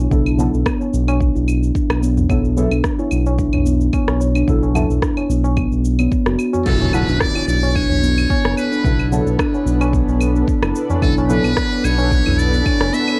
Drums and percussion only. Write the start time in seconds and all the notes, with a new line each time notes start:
0.00 tabla tin
0.11 kick, cabasa
0.26 cabasa, claves
0.39 cabasa
0.54 cabasa
0.66 kick, cross-stick, cabasa, claves
0.81 tabla tin, cabasa
0.94 cabasa
1.08 tabla na, tabla tin, cabasa, claves
1.20 kick, cabasa
1.36 cabasa
1.48 cabasa, claves
1.63 cabasa
1.75 kick, cabasa
1.90 cross-stick, cabasa, claves
2.03 cabasa
2.17 tabla ge, cabasa
2.30 kick, cabasa, claves
2.45 cabasa
2.57 cabasa
2.71 cabasa, claves
2.84 kick, cross-stick, cabasa
2.99 tabla tin, cabasa
3.11 cabasa, claves
3.26 tabla na, tabla tin, cabasa
3.39 kick, cabasa
3.53 tabla tin, tabla ge, cabasa, claves
3.66 cabasa
3.81 cabasa
3.93 kick, tabla na, cabasa, claves
4.08 cross-stick, tabla na, cabasa
4.21 tabla tin, cabasa
4.35 tabla tin, cabasa, claves
4.48 kick, cabasa
4.63 tabla na, cabasa
4.75 tabla ge, cabasa, claves
4.91 cabasa
5.02 kick, cross-stick, cabasa
5.17 tabla tin, cabasa, claves
5.30 cabasa
5.44 tabla na, tabla tin, cabasa
5.57 kick, cabasa, claves
5.72 cabasa
5.85 cabasa
5.99 cabasa, claves
6.12 kick, cabasa
6.26 cross-stick, cabasa
6.39 cabasa, claves
6.53 tabla na, tabla ge, cabasa
6.66 kick, crash, cabasa
6.81 tabla na, cabasa
6.93 cabasa, claves
7.08 cabasa
7.20 kick, cross-stick, cabasa
7.35 tabla tin, cabasa, claves
7.48 cabasa
7.63 tabla na, tabla tin, cabasa
7.75 kick, cabasa, claves
7.89 tabla tin, tabla ge, cabasa
8.03 cabasa
8.18 cabasa, claves
8.30 kick, tabla na, cabasa
8.45 cross-stick, tabla na, cabasa
8.57 tabla tin, cabasa, claves
8.72 tabla tin, cabasa
8.85 kick, cabasa
9.00 cabasa, claves
9.13 cabasa
9.27 cabasa
9.39 kick, cross-stick, cabasa, claves
9.54 tabla tin, cabasa
9.67 cabasa
9.81 tabla na, tabla tin, cabasa, claves
9.93 kick, cabasa
10.09 tabla na, cabasa
10.21 cabasa, claves
10.36 cabasa
10.48 kick, cabasa
10.63 cross-stick, cabasa, claves
10.75 cabasa
10.90 tabla na, tabla ge, cabasa
11.02 kick, cabasa, claves
11.17 tabla na, cabasa
11.30 cabasa
11.44 cabasa, claves
11.57 kick, cross-stick, cabasa
11.72 tabla tin, cabasa
11.84 cabasa, claves
11.98 tabla na, tabla tin, cabasa
12.11 kick, cabasa
12.26 tabla tin, tabla ge, cabasa, claves
12.39 cabasa
12.54 cabasa
12.66 kick, tabla na, cabasa, claves
12.81 cross-stick, tabla na, cabasa
12.93 tabla tin, cabasa
13.08 tabla tin, cabasa, claves